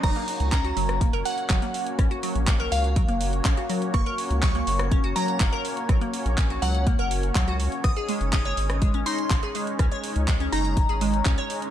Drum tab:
CC |x---------------|----------------|----------------|----------------|
HH |xxoxxxoxxxoxxxox|xxoxxxoxxxoxxxox|xxoxxxoxxxoxxxox|xxoxxxoxxxoxxxox|
CP |----x-------x---|----x-------x---|----x-------x---|----x-------x---|
SD |r------r--------|r---------------|r------r--------|r---------------|
BD |o---o---o---o---|o---o---o---o---|o---o---o---o---|o---o---o---o---|

CC |----------------|----------------|
HH |xxoxxxoxxxoxxxox|xxoxxxoxxxoxxxox|
CP |----x-------x---|----x-------x---|
SD |r------r--------|r---------------|
BD |o---o---o---o---|o---o---o---o---|